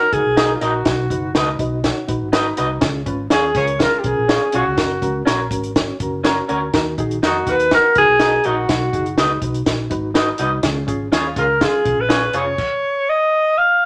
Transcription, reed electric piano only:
0.12 0.31 D#4 medium
0.12 0.32 F#4 medium
0.12 0.32 A#4 medium
0.36 0.56 D#4 medium
0.36 0.56 F#4 medium
0.36 0.56 A#4 loud
0.61 0.80 D#4 medium
0.61 0.81 F#4 medium
0.61 0.81 A#4 medium
0.86 1.56 B2 medium
0.86 1.05 D#4 medium
0.86 1.05 F#4 medium
0.86 1.05 B4 medium
1.10 1.29 D#4 medium
1.10 1.30 F#4 medium
1.10 1.30 B4 medium
1.34 1.53 D#4 medium
1.34 1.54 F#4 medium
1.34 1.54 B4 medium
1.59 1.78 D#4 medium
1.59 1.79 F#4 medium
1.59 1.79 B4 medium
1.59 1.82 D#5 medium
1.83 2.03 D#4 medium
1.83 2.03 F#4 medium
1.83 2.03 C#5 medium
1.83 2.29 F#5 medium
2.08 2.27 D#4 medium
2.08 2.27 F#4 medium
2.08 2.28 B4 medium
2.33 2.52 D#4 loud
2.33 2.52 F#4 loud
2.33 2.52 B4 loud
2.33 2.79 A#5 medium
2.56 2.76 D#4 medium
2.56 2.76 F#4 medium
2.56 2.76 B4 medium
2.81 3.51 C#3 medium
2.81 3.00 C#4 loud
2.81 3.01 F4 medium
2.81 3.01 G#4 loud
3.06 3.25 C#4 loud
3.06 3.26 F4 medium
3.06 3.26 B4 loud
3.31 3.50 C#4 medium
3.31 3.50 F4 medium
3.31 3.50 G#4 medium
3.56 3.74 C#4 medium
3.56 3.75 F4 medium
3.56 3.75 A#4 medium
3.80 3.99 C#4 medium
3.80 3.99 F4 medium
3.80 3.99 A#4 medium
4.05 4.24 C#4 medium
4.05 4.24 F4 medium
4.05 4.24 A#4 medium
4.28 4.47 C#4 medium
4.28 4.48 F4 medium
4.28 4.48 G#4 loud
4.53 4.72 C#4 medium
4.53 4.72 F4 medium
4.53 4.73 G#4 medium
4.77 4.96 C#4 medium
4.77 4.96 F#4 medium
4.77 4.97 A#4 loud
5.02 5.21 C#4 medium
5.02 5.21 F#4 medium
5.02 5.21 A#4 medium
5.26 5.45 C#4 medium
5.26 5.46 F#4 medium
5.26 5.46 A#4 medium
5.50 5.70 C#4 medium
5.50 5.70 F#4 medium
5.50 5.70 A#4 medium
5.76 5.95 C#4 medium
5.76 5.95 F#4 medium
5.76 5.95 C#5 medium
6.01 6.19 C#4 medium
6.01 6.20 F#4 medium
6.01 6.20 A#4 medium
6.25 6.44 C#4 loud
6.25 6.44 F#4 medium
6.25 6.44 A#4 loud
6.49 6.68 C#4 medium
6.49 6.68 F#4 medium
6.49 6.69 A#4 medium
6.73 7.43 D#3 medium
6.73 6.92 D#4 loud
6.73 6.93 F#4 loud
6.73 6.93 A#4 loud
6.98 7.17 D#4 medium
6.98 7.17 F#4 medium
6.98 7.18 G#4 loud
7.23 7.41 D#4 medium
7.23 7.42 A#4 medium
7.48 7.66 D#4 medium
7.48 7.66 F#4 medium
7.48 7.67 A#4 medium
7.72 7.90 D#4 medium
7.72 7.91 A#4 medium
7.96 8.14 D#4 medium
7.96 8.15 F#4 medium
7.96 8.15 A#4 medium
8.20 8.39 D#4 medium
8.20 8.39 F#4 medium
8.20 8.39 A#4 loud
8.45 8.63 D#4 medium
8.45 8.64 F#4 medium
8.45 8.64 A#4 medium
8.69 9.38 B2 medium
8.69 8.88 D#4 medium
8.69 8.88 F#4 medium
8.69 8.88 B4 medium
8.93 9.12 D#4 medium
8.93 9.12 F#4 medium
8.93 9.13 G#4 medium
9.17 9.36 D#4 medium
9.17 9.37 F#4 medium
9.17 9.37 G#4 medium
9.42 9.61 D#4 medium
9.42 9.61 F#4 medium
9.42 9.62 B4 medium
9.66 9.85 D#4 medium
9.66 9.85 F#4 medium
9.66 9.86 B4 medium
9.90 10.09 D#4 medium
9.90 10.10 F#4 medium
9.90 10.10 B4 medium
10.14 10.34 D#4 loud
10.14 10.34 F#4 loud
10.14 10.34 B4 loud
10.39 10.58 D#4 medium
10.39 10.58 F#4 medium
10.39 10.59 B4 medium
10.63 11.33 C#3 medium
10.63 10.82 C#4 loud
10.63 10.83 F4 loud
10.63 10.83 G#4 loud
10.87 11.06 C#4 loud
10.87 11.07 F4 medium
10.87 11.07 G#4 loud
11.12 11.31 C#4 medium
11.12 11.31 F4 medium
11.12 11.32 G#4 medium
11.36 11.55 C#4 medium
11.36 11.56 F4 medium
11.36 11.56 A#4 medium
11.61 11.80 C#4 medium
11.61 11.80 F4 medium
11.61 11.81 G#4 medium
11.84 12.04 C#4 medium
11.84 12.04 F4 medium
11.84 12.05 G#4 medium
12.09 12.28 C#4 medium
12.09 12.29 F4 medium
12.09 12.29 G#4 loud
12.34 12.53 C#4 medium
12.34 12.53 F4 medium
12.34 12.54 G#4 medium

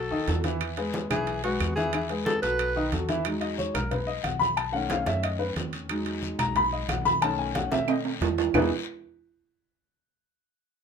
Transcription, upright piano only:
0.11 0.25 D#3 medium
0.11 0.25 D#4 medium
0.11 0.25 D#5 medium
0.28 0.41 F#3 medium
0.28 0.42 F#4 medium
0.28 0.42 A4 medium
0.44 0.71 E3 medium
0.44 0.72 E4 medium
0.44 0.72 E5 medium
0.78 1.05 G#3 medium
0.78 1.05 G#4 medium
0.78 1.05 B4 medium
1.10 1.38 E3 medium
1.10 1.37 E4 medium
1.10 1.38 E5 medium
1.43 1.71 G#3 medium
1.43 1.71 G#4 medium
1.43 1.71 B4 medium
1.77 1.90 E3 medium
1.77 1.90 E4 medium
1.77 1.91 E5 medium
1.94 2.07 E3 medium
1.94 2.07 E4 medium
1.94 2.08 E5 medium
2.10 2.37 G#3 medium
2.10 2.37 G#4 medium
2.10 2.37 B4 medium
2.43 2.70 F#3 medium
2.43 2.70 F#4 medium
2.43 2.70 A4 medium
2.76 2.89 D#3 medium
2.76 2.90 D#4 medium
2.76 2.90 D#5 medium
2.92 3.06 F#3 medium
2.92 3.06 F#4 medium
2.92 3.06 A4 medium
3.09 3.22 E3 medium
3.09 3.22 E4 medium
3.09 3.23 E5 medium
3.25 3.72 F#3 medium
3.25 3.73 G#3 medium
3.25 3.73 D#4 medium
3.41 3.57 D#5 medium
3.58 3.74 C#5 medium
3.74 3.91 A#4 medium
3.91 4.07 B4 medium
4.07 4.23 D#5 medium
4.24 4.40 F#5 medium
4.39 4.56 B5 loud
4.57 4.73 A5 medium
4.72 5.85 D#3 medium
4.72 5.85 A3 soft
4.72 5.86 C#4 medium
4.72 4.90 F#5 medium
4.90 5.06 F5 medium
5.06 5.23 E5 medium
5.23 5.39 D#5 medium
5.39 5.49 B4 medium
5.89 7.18 F#3 medium
5.89 7.18 G#3 medium
5.89 7.18 D#4 medium
6.39 6.55 A#5 loud
6.56 6.72 B5 loud
6.73 6.89 D#5 medium
6.89 7.05 F#5 medium
7.05 7.21 B5 loud
7.21 8.50 D#3 medium
7.21 8.50 A3 soft
7.21 8.50 C#4 medium
7.21 7.38 A5 medium
7.38 7.54 G#5 medium
7.55 7.71 F#5 medium
7.72 7.88 E5 medium
7.89 7.99 D#5 medium
8.54 8.70 E3 medium
8.54 8.69 B3 medium
8.54 8.70 D#4 medium
8.54 8.70 E4 medium
8.54 8.70 G#4 medium
8.54 8.70 B4 loud

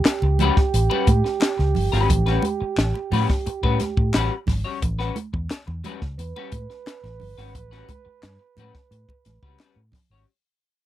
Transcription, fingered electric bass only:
0.05 muted fingered electric bass stroke medium
0.22 0.49 C#2 medium
0.74 0.87 A1 loud
1.08 1.21 A2 medium
1.59 1.73 C#2 medium
1.76 1.89 G1 medium
1.93 2.07 G#1 medium
2.10 2.37 A1 loud
2.61 muted fingered electric bass stroke medium
2.78 2.91 A1 loud
3.12 3.26 A2 loud
3.47 muted fingered electric bass stroke soft
3.63 3.77 A2 loud
3.97 4.11 A2 medium
4.15 4.28 A1 loud
4.48 4.62 G#1 medium
4.82 5.09 A1 loud
5.34 5.47 E2 medium
5.68 5.81 E2 loud
6.02 6.15 C#2 loud
6.18 6.32 E2 loud
6.53 6.66 A2 medium
7.04 7.17 A1 medium
7.21 7.34 G1 loud
7.38 7.55 G#1 loud
7.55 7.82 A1 loud
8.06 muted fingered electric bass stroke soft
8.23 8.37 G2 loud
8.57 8.71 A2 loud
8.91 9.05 A2 loud
9.26 9.39 A1 medium
9.43 9.56 C#2 medium
9.76 9.90 A2 loud
10.10 10.24 G#1 medium

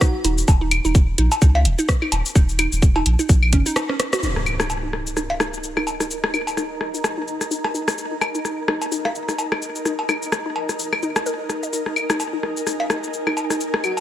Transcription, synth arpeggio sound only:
0.01 0.11 D#4 medium
0.24 0.31 D#4 medium
0.61 0.69 D#4 medium
0.85 0.90 D#4 medium
1.18 1.28 D#4 medium
1.42 1.48 D#4 medium
1.79 1.86 D#4 medium
2.02 2.07 D#4 medium
2.35 2.45 D#4 medium
2.59 2.65 D#4 medium
2.96 3.03 D#4 medium
3.19 3.24 D#4 medium
3.53 3.62 C#4 medium
3.66 3.69 D#4 loud
3.76 3.82 D#4 loud
3.89 3.97 C#4 medium
4.13 4.16 F#4 medium
4.23 4.29 D#4 medium
4.60 4.67 D#4 medium
4.83 4.88 D#4 medium
5.17 5.26 D#4 medium
5.40 5.47 D#4 medium
5.77 5.84 D#4 medium
6.00 6.05 D#4 medium
6.34 6.44 D#4 medium
6.57 6.64 D#4 medium
6.94 7.01 D#4 medium
7.18 7.22 D#4 medium
7.51 7.61 D#4 medium
7.74 7.81 D#4 medium
8.11 8.19 D#4 medium
8.35 8.40 D#4 medium
8.68 8.78 D#4 medium
8.92 8.98 D#4 medium
9.29 9.36 D#4 medium
9.52 9.57 D#4 medium
9.86 9.95 D#4 medium
10.09 10.15 D#4 medium
10.46 10.53 D#4 medium
10.69 10.74 D#4 medium
11.03 11.07 D#4 loud
11.26 11.33 A#4 medium
11.63 11.68 D#5 medium
11.73 11.79 D#4 medium
12.10 12.17 D#4 medium
12.33 12.38 D#4 medium
12.67 12.76 D#4 medium
12.90 12.97 D#4 medium
13.27 13.34 D#4 medium
13.50 13.55 D#4 medium
13.84 13.94 D#4 medium

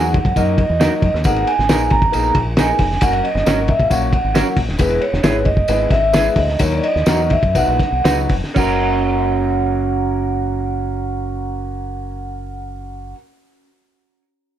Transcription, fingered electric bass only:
0.00 0.19 E2 loud
0.25 0.34 F#2 medium
0.36 0.63 F#2 medium
0.70 0.88 E2 loud
1.03 1.12 F#2 loud
1.14 1.27 D#2 medium
1.25 1.43 G#1 loud
1.59 1.67 G#1 loud
1.70 1.88 A#1 medium
1.91 2.09 G#1 loud
2.15 2.32 A#1 medium
2.35 2.71 A#1 medium
2.79 2.98 F1 loud
3.02 3.20 F#1 loud
3.35 3.44 F#1 medium
3.47 3.74 G#1 loud
3.80 3.89 A#1 loud
3.91 4.18 A#1 medium
4.24 4.42 G#1 medium
4.57 4.66 A#1 medium
4.69 4.78 D#1 medium
4.80 4.97 E1 loud
5.13 5.22 E1 loud
5.23 5.46 G#1 loud
5.46 5.64 F#1 medium
5.69 5.87 G#1 loud
5.91 6.28 G#1 medium
6.36 6.55 D2 loud
6.60 6.79 D#2 loud
6.96 7.05 D#2 medium
7.07 7.36 E2 loud
7.43 7.53 F#2 medium
7.55 7.65 B1 loud
7.68 7.78 A#1 medium
7.92 8.03 B1 medium
8.05 8.25 C#2 loud
8.30 8.40 F1 medium
8.56 13.13 F#1 loud

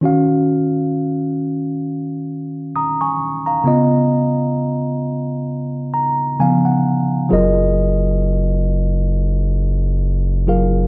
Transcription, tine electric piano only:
0.01 3.16 D#3 medium
0.01 3.17 C#4 medium
0.01 3.18 F#4 medium
0.05 2.73 F5 medium
2.76 3.01 A#5 soft
2.76 3.00 D#6 medium
3.01 3.45 G#5 soft
3.01 3.45 C#6 soft
3.46 3.90 F5 soft
3.46 3.90 A#5 medium
3.64 6.34 C#3 medium
3.64 6.35 B3 medium
3.64 6.36 F4 medium
3.64 6.36 D#5 medium
5.94 6.36 A#5 medium
6.40 7.30 C#3 soft
6.40 7.31 F3 soft
6.40 7.31 B3 soft
6.40 7.31 F5 medium
6.40 6.64 G#5 medium
6.65 7.27 F#5 soft
7.29 10.44 F#3 medium
7.29 10.45 F4 medium
7.29 10.45 G#4 medium
7.29 10.46 A#4 medium
7.29 10.46 D#5 medium
10.47 10.87 F#3 soft
10.47 10.87 F4 soft
10.47 10.87 G#4 soft
10.47 10.87 A#4 soft
10.47 10.87 F5 medium

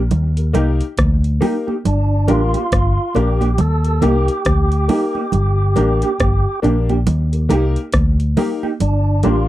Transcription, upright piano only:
0.37 0.44 G4 soft
0.37 0.44 A#4 soft
0.53 0.80 A#3 medium
0.53 0.80 D#4 medium
0.53 0.81 G4 medium
0.53 0.81 A#4 medium
1.41 1.67 A#3 medium
1.41 1.67 D#4 medium
1.41 1.66 G4 medium
1.41 1.66 A#4 medium
1.67 1.74 G4 soft
1.67 1.74 A#4 soft
2.28 2.54 A#3 medium
2.28 2.54 D4 medium
2.28 2.55 G4 medium
2.28 2.55 A#4 medium
3.15 3.41 A#3 medium
3.15 3.41 D4 medium
3.15 3.42 G4 medium
3.15 3.42 A#4 medium
3.85 3.92 G4 soft
3.85 3.92 A#4 soft
4.01 4.28 A#3 medium
4.01 4.28 D#4 medium
4.01 4.28 G4 medium
4.01 4.29 A#4 loud
4.88 5.15 A#3 medium
4.88 5.15 D#4 medium
4.88 5.14 G4 medium
4.88 5.14 A#4 medium
5.16 5.22 G4 soft
5.16 5.22 A#4 soft
5.76 6.02 A#3 medium
5.76 6.02 D4 medium
5.76 6.02 G4 medium
5.76 6.03 A#4 medium
6.62 6.89 A#3 medium
6.62 6.89 D4 medium
6.62 6.89 G4 medium
6.62 6.89 A#4 medium
7.32 7.40 G4 soft
7.32 7.40 A#4 soft
7.49 7.76 A#3 medium
7.49 7.76 D#4 medium
7.49 7.76 G4 medium
7.49 7.76 A#4 loud
8.37 8.63 A#3 medium
8.37 8.63 D#4 medium
8.37 8.63 G4 medium
8.37 8.63 A#4 medium
9.23 9.48 A#3 medium
9.23 9.48 D4 medium
9.23 9.48 G4 medium
9.23 9.48 A#4 medium

